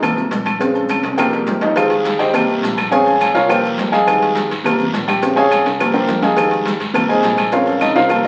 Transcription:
Already playing: upright bass G#2
0.02 grand piano C3 G3 A#3, cowbell, high conga, low conga, low agogo, claves, maracas
0.17 high conga, low conga, maracas
0.31 upright bass A#1, cowbell, high conga, low timbale, low agogo, maracas
0.46 cowbell, high conga, low agogo, claves, maracas
0.59 grand piano C#3 G#3 C4, cowbell, high conga, maracas
0.75 high conga, low agogo, maracas
0.89 cowbell, high conga, low timbale, low agogo, claves, maracas
1.03 upright bass C2, cowbell, high conga, high timbale, maracas
1.17 grand piano F3 G3 A#3 G4 A#4 C5 G5, cowbell, high timbale, low agogo, claves, maracas
1.32 high conga, high timbale, low agogo, maracas
1.46 upright bass F2, cowbell, high conga, low timbale, maracas
1.61 grand piano D#4 D#5, cowbell, high conga, low timbale, low agogo, maracas
1.76 grand piano D#3 G#3 F4 G4 G#4 C5 F5, cowbell, high conga, low agogo, long guiro, claves, maracas
1.90 cowbell, high conga, maracas
2.05 cowbell, high conga, low timbale, low agogo, short guiro, maracas
2.19 upright bass G#2, grand piano G4 C5 D#5 G5, cowbell, high conga, short guiro, maracas
2.33 grand piano C3 G3 A#3, cowbell, high conga, low conga, low agogo, long guiro, claves, maracas
2.49 high conga, maracas
2.62 upright bass A#1, cowbell, high conga, low timbale, low agogo, short guiro, maracas
2.78 cowbell, high conga, low agogo, short guiro, claves, maracas
2.91 grand piano C#3 G#3 C4 G#4 C#5 F5 G#5, cowbell, high conga, long guiro, maracas
3.06 high conga, low agogo, maracas
3.21 cowbell, high conga, low timbale, low agogo, short guiro, claves, maracas
3.34 upright bass C2, grand piano F4 A#4 C#5 F5, cowbell, high conga, short guiro, maracas
3.48 grand piano F3 G3 A#3 G4 A#4 C5 G5, cowbell, high conga, low agogo, long guiro, claves, maracas
3.64 high conga, low agogo, maracas
3.77 upright bass F2, cowbell, high conga, low timbale, short guiro, maracas
3.92 grand piano G#4 D#5 F5 G#5, cowbell, high conga, low agogo, short guiro, maracas
4.06 grand piano D#3 G3 G#3, cowbell, high conga, low agogo, long guiro, claves, maracas
4.21 cowbell, high conga, maracas
4.35 cowbell, high conga, low timbale, low agogo, short guiro, maracas
4.50 upright bass G#2, cowbell, high conga, short guiro, maracas
4.64 grand piano C3 G3 A#3, cowbell, high conga, low conga, low agogo, long guiro, claves, maracas
4.79 high conga, low conga, maracas
4.93 upright bass A#1, cowbell, high conga, low timbale, low agogo, short guiro, maracas
5.08 grand piano G4 G5, cowbell, high conga, low agogo, short guiro, claves, maracas
5.22 grand piano C#3 G#3 C4, cowbell, high bongo, high conga, long guiro, maracas
5.36 grand piano G#4 C#5 F5 G#5, high bongo, high conga, low agogo, maracas
5.51 cowbell, high conga, low timbale, low agogo, short guiro, claves, maracas
5.65 upright bass C2, cowbell, low bongo, high conga, short guiro, maracas
5.80 grand piano F3 G3 A#3, cowbell, high conga, low agogo, long guiro, claves, maracas
5.94 grand piano G4 A#4 C5 G5, low bongo, low agogo, maracas
6.08 upright bass F2, cowbell, low bongo, high conga, low timbale, short guiro, maracas
6.22 grand piano G#4 D#5 F5 G#5, cowbell, low bongo, high conga, low agogo, short guiro, maracas
6.36 grand piano D#3 G3 G#3, cowbell, high conga, low agogo, long guiro, claves, maracas
6.51 cowbell, high conga, maracas
6.65 cowbell, high conga, low timbale, low agogo, short guiro, maracas
6.80 upright bass G#2, cowbell, high conga, short guiro, maracas
6.93 grand piano C3 G3 A#3, cowbell, high conga, low conga, low agogo, long guiro, claves, maracas
7.09 grand piano G#4 C5 D#5 G#5, high conga, maracas
7.23 upright bass A#1, cowbell, high conga, low timbale, low agogo, short guiro, maracas
7.37 cowbell, high conga, low agogo, short guiro, claves, maracas
7.52 grand piano C#3 G#3 C4 F4 A#4 C#5 F5, cowbell, high conga, long guiro, maracas
7.66 high conga, low agogo, maracas
7.81 grand piano D#4 D#5, cowbell, high conga, low timbale, low agogo, short guiro, claves, maracas
7.95 upright bass C2, grand piano F4 A#4 C5 F5, cowbell, high conga, short guiro, maracas
8.09 grand piano F3 G3 A#3, cowbell, high conga, low agogo, long guiro, claves, maracas

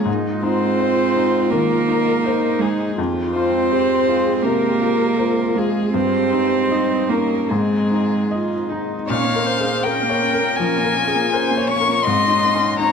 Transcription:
Already playing: ambient pad G#3
0.05 felt piano G#2, ambient pad D#4 C5, viola D#4
0.42 cello C4, felt piano D#4, viola F4, violin C5
0.80 felt piano C5
1.16 felt piano D#4
1.50 felt piano D#3, cello A#3, violin A#4
1.88 felt piano D#4
2.24 viola D#4, felt piano C5
2.59 cello G#3, felt piano D#4, violin G#4
2.95 felt piano F2, ambient pad G#3 F4, viola F4
3.33 cello C4, felt piano F4, violin C5
3.72 viola G4, felt piano C5
4.08 felt piano F4, viola G#4
4.43 felt piano C3, cello A#3, viola G4, violin A#4
4.82 felt piano F4
5.18 viola F4, felt piano C5
5.55 cello G#3, felt piano F4, violin G#4, viola G#4
5.93 felt piano G2, ambient pad A#3 D#4 D#5, cello C4, viola G4, violin C5
6.32 felt piano D#4
6.71 viola D#4, felt piano D#5
7.09 cello A#3, viola C#4, felt piano D#4, violin A#4
7.50 felt piano G#2, cello G#3, ambient pad C4, viola C4, violin G#4
7.91 felt piano D#4
8.31 viola F4, felt piano D#5
8.69 viola D#4, felt piano D#4
9.08 felt piano A#2, ambient pad A#3 C#4 F4, cello C#4, viola C#5, violin F5
9.26 cello A#3
9.35 felt piano A#4
9.44 cello C#4, viola C5
9.60 felt piano G#4
9.64 cello A#3
9.83 cello C#4, felt piano A#4, viola A#4, violin G5
10.03 cello A#3
10.09 felt piano C#5
10.22 cello C#4
10.33 felt piano A#4
10.39 cello A#3
10.57 felt piano F3, cello C#4, violin G#5
10.78 cello A#3
10.84 felt piano A#4
10.96 cello C#4
11.07 felt piano G#4
11.15 cello A#3
11.32 cello C#4, felt piano A#4, viola C5
11.51 cello A#3
11.57 felt piano C#5
11.68 cello C#4, viola C#5, violin C#6
11.80 felt piano A#4
11.89 cello A#3
12.03 felt piano G#2, ambient pad G#3 D#4 D#5, cello C4, viola D#5, violin C6
12.25 cello D#4
12.30 felt piano D#4
12.44 cello C4
12.55 felt piano C#4
12.62 cello D#4
12.79 cello C4, felt piano D#4, viola C#5, violin A#5

